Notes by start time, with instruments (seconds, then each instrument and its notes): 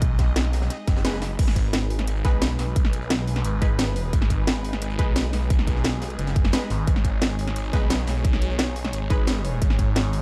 Already playing: detuned saw bass B1, synth stab G#3 D#4 B4, string section G#3 D#4 G#4 D#5
0.02 kick, closed hi-hat
0.19 kick, snare, closed hi-hat
0.28 closed hi-hat
0.36 snare, closed hi-hat
0.45 snare
0.53 snare, closed hi-hat, open hi-hat
0.61 snare, closed hi-hat
0.70 snare, closed hi-hat
0.87 detuned saw bass F#1, kick, snare, closed hi-hat
0.96 snare, closed hi-hat
1.05 detuned saw bass F#1, synth stab G#3 D#4 B4, snare, closed hi-hat
1.13 snare, closed hi-hat
1.22 snare, closed hi-hat, open hi-hat
1.39 detuned saw bass G#1, string section G#3 D#4 G#4 B4, kick, closed hi-hat, crash
1.48 snare
1.56 kick, closed hi-hat
1.73 snare, closed hi-hat
1.82 closed hi-hat
1.90 closed hi-hat, open hi-hat
1.99 snare, closed hi-hat
2.07 closed hi-hat
2.16 closed hi-hat
2.25 detuned saw bass B1, synth stab G#3 D#4 B4, kick, snare, closed hi-hat
2.41 snare, closed hi-hat
2.59 detuned saw bass B1, snare, closed hi-hat, open hi-hat
2.67 closed hi-hat
2.76 kick, closed hi-hat
2.85 snare
2.93 closed hi-hat
3.02 closed hi-hat
3.10 snare, closed hi-hat
3.19 snare
3.27 closed hi-hat, open hi-hat
3.36 snare, closed hi-hat
3.44 detuned saw bass G#1, closed hi-hat
3.62 synth stab G#3 D#4 B4, kick, closed hi-hat
3.79 snare, closed hi-hat
3.87 snare
3.96 open hi-hat
4.13 detuned saw bass G#1, kick, closed hi-hat
4.22 snare
4.30 kick, closed hi-hat
4.47 snare, closed hi-hat
4.55 closed hi-hat
4.64 closed hi-hat, open hi-hat
4.73 snare, closed hi-hat
4.82 closed hi-hat
4.90 closed hi-hat
4.99 detuned saw bass B1, synth stab G#3 D#4 B4, kick, closed hi-hat
5.16 snare, closed hi-hat
5.33 detuned saw bass B1, snare, closed hi-hat, open hi-hat
5.42 closed hi-hat
5.50 kick, closed hi-hat
5.59 snare
5.67 kick, closed hi-hat
5.76 snare
5.84 snare, closed hi-hat
5.93 snare
6.02 snare, closed hi-hat, open hi-hat
6.10 closed hi-hat
6.19 detuned saw bass F#1, closed hi-hat
6.27 snare, closed hi-hat
6.36 kick, closed hi-hat
6.44 snare, closed hi-hat
6.52 synth stab G#3 D#4 B4, snare, closed hi-hat
6.62 snare
6.70 detuned saw bass G#1, snare, closed hi-hat, open hi-hat
6.87 detuned saw bass G#1, string section C#5, kick, closed hi-hat
6.96 snare
7.04 kick, closed hi-hat
7.21 snare, closed hi-hat
7.30 closed hi-hat
7.39 closed hi-hat, open hi-hat
7.47 snare, closed hi-hat
7.56 closed hi-hat
7.64 closed hi-hat
7.73 detuned saw bass B1, synth stab G#3 D#4 B4, kick, snare, closed hi-hat
7.90 snare, closed hi-hat
8.07 detuned saw bass B1, snare, closed hi-hat, open hi-hat
8.17 closed hi-hat
8.25 kick, closed hi-hat
8.33 snare
8.42 closed hi-hat
8.50 closed hi-hat
8.59 snare, closed hi-hat
8.67 snare
8.75 closed hi-hat, open hi-hat
8.85 snare, closed hi-hat
8.93 detuned saw bass G#1, closed hi-hat
9.10 synth stab G#3 D#4 B4, kick, closed hi-hat
9.27 snare, closed hi-hat
9.37 snare
9.45 open hi-hat
9.62 detuned saw bass G#1, kick, closed hi-hat
9.70 snare
9.79 kick, closed hi-hat
9.95 snare, closed hi-hat
10.13 closed hi-hat, open hi-hat